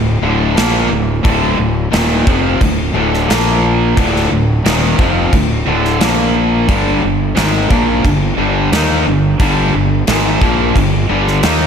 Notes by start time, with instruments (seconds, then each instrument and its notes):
Already playing: fingered electric bass D1, overdriven electric guitar D2 A2
0.22 fingered electric bass D1, overdriven electric guitar D2 A2 D3
0.56 fingered electric bass A#1, overdriven electric guitar A#2 F3 A#3, snare, crash
0.90 fingered electric bass D1, overdriven electric guitar D2 A2
1.23 fingered electric bass D1, overdriven electric guitar D2 A2 D3, kick, crash
1.58 fingered electric bass D1, overdriven electric guitar D2 A2
1.91 fingered electric bass D#1, overdriven electric guitar D#2 A#2 D#3, snare, crash
2.26 fingered electric bass F1, overdriven electric guitar F2 C3 F3, kick
2.61 fingered electric bass D1, overdriven electric guitar D2 A2, kick, crash
2.93 fingered electric bass D1, overdriven electric guitar D2 A2 D3
3.14 snare
3.28 fingered electric bass A#1, overdriven electric guitar A#2 F3 A#3, snare, crash
3.96 fingered electric bass D1, overdriven electric guitar D2 A2 D3, kick, crash
4.16 snare
4.30 fingered electric bass D1, overdriven electric guitar D2 A2
4.65 fingered electric bass D#1, overdriven electric guitar D#2 A#2 D#3, snare, crash
4.98 fingered electric bass F1, overdriven electric guitar F2 C3 F3, kick
5.32 fingered electric bass D1, overdriven electric guitar D2 A2, kick, crash
5.66 fingered electric bass D1, overdriven electric guitar D2 A2 D3
5.85 snare
6.00 fingered electric bass A#1, overdriven electric guitar A#2 F3 A#3, snare, crash
6.68 fingered electric bass G1, overdriven electric guitar G2 D3 G3, kick, crash
7.02 fingered electric bass G1, overdriven electric guitar G2 D3
7.36 fingered electric bass G#1, overdriven electric guitar G#2 D#3 G#3, snare, crash
7.70 fingered electric bass A#1, overdriven electric guitar A#2 F3 A#3, kick
8.04 fingered electric bass G1, overdriven electric guitar G2 D3, kick, crash
8.37 fingered electric bass G1, overdriven electric guitar G2 D3 G3
8.71 fingered electric bass D#2, overdriven electric guitar D#3 A#3 D#4, snare, crash
9.06 fingered electric bass G1, overdriven electric guitar G2 D3
9.40 fingered electric bass G1, overdriven electric guitar G2 D3 G3, kick, crash
9.74 fingered electric bass G1, overdriven electric guitar G2 D3
10.07 fingered electric bass G#1, overdriven electric guitar G#2 D#3 G#3, snare, crash
10.41 fingered electric bass A#1, overdriven electric guitar A#2 F3 A#3, kick
10.76 fingered electric bass G1, overdriven electric guitar G2 D3, kick, crash
11.09 fingered electric bass G1, overdriven electric guitar G2 D3 G3
11.28 snare
11.43 fingered electric bass D#2, overdriven electric guitar D#3 A#3 D#4, snare, crash